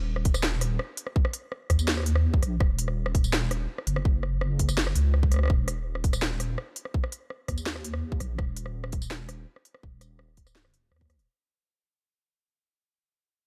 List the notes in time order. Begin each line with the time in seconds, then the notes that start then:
Already playing: D#1
0.16 cross-stick
0.25 kick, closed hi-hat
0.34 cross-stick, tambourine
0.43 snare
0.61 cross-stick, closed hi-hat
0.79 cross-stick
0.97 closed hi-hat
1.07 cross-stick
1.16 kick
1.25 cross-stick
1.33 closed hi-hat
1.52 cross-stick
1.70 D#2, kick, cross-stick, closed hi-hat
1.79 tambourine
1.88 snare
1.97 cross-stick
2.00 cross-stick
2.03 cross-stick, closed hi-hat
2.16 cross-stick
2.34 kick
2.42 A#1, cross-stick, closed hi-hat
2.60 D#1, kick, cross-stick
2.79 closed hi-hat
2.88 cross-stick
3.06 cross-stick
3.15 kick, closed hi-hat
3.24 tambourine
3.33 cross-stick, snare
3.51 cross-stick, closed hi-hat
3.78 cross-stick
3.87 F#1, closed hi-hat
3.96 cross-stick
4.05 kick
4.23 cross-stick
4.41 cross-stick
4.59 kick, closed hi-hat
4.69 cross-stick, tambourine
4.78 snare
4.87 cross-stick
4.96 C#2, closed hi-hat
5.14 cross-stick
5.23 kick
5.32 cross-stick, closed hi-hat
5.34 cross-stick
5.36 cross-stick
5.39 cross-stick
5.43 cross-stick
5.45 cross-stick
5.48 cross-stick
5.50 D#1, kick, cross-stick
5.68 cross-stick, closed hi-hat
5.95 cross-stick
6.04 kick, closed hi-hat
6.13 cross-stick, tambourine
6.22 snare
6.40 cross-stick, closed hi-hat
6.58 cross-stick
6.76 closed hi-hat
6.85 cross-stick
6.94 kick
7.04 cross-stick
7.12 closed hi-hat
7.30 cross-stick
7.48 D#2, kick, cross-stick, closed hi-hat
7.58 tambourine
7.66 snare
7.76 cross-stick
7.84 closed hi-hat
7.94 cross-stick
8.12 kick
8.20 A#1, cross-stick, closed hi-hat
8.38 D#1, kick, cross-stick
8.57 closed hi-hat
8.66 cross-stick
8.84 cross-stick
8.92 kick, closed hi-hat
9.02 tambourine
9.11 cross-stick, snare
9.29 cross-stick, closed hi-hat
9.56 cross-stick
9.65 closed hi-hat
9.75 cross-stick
9.83 D#1, kick
10.01 cross-stick, closed hi-hat, tambourine
10.19 cross-stick
10.37 kick, closed hi-hat
10.47 cross-stick, tambourine
10.55 snare
10.65 cross-stick
10.74 closed hi-hat
10.92 D#2, cross-stick
10.96 cross-stick
11.01 kick, cross-stick
11.05 cross-stick
11.10 cross-stick, closed hi-hat
11.19 closed hi-hat